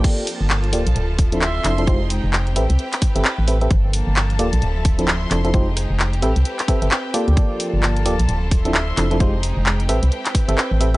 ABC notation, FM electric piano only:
X:1
M:4/4
L:1/16
Q:"Swing 16ths" 1/4=131
K:Aphr
V:1 name="FM electric piano"
[B,FGAd]2 z4 [B,FGAd] z4 [F,CDEA] z2 [F,CDEA] [F,CDEA] | [_A,_EFGc] z4 z [CG=A=B=e] z4 [CGABe] z2 [CGABe] [CGABe] | z6 [B,FGAd] z4 [F,CDEA] z2 [F,CDEA] [F,CDEA] | [_A,_EFGc] z4 z [CG=A=B=e] z3 [CGABe] [CGABe] z2 [_B,FGAd]2- |
[B,FGAd]6 [B,FGAd] z4 [F,CDEA] z2 [F,CDEA] [F,CDEA] | [_A,_EFGc] z4 z [CG=A=B=e] z4 [CGABe] z2 [CGABe] z |]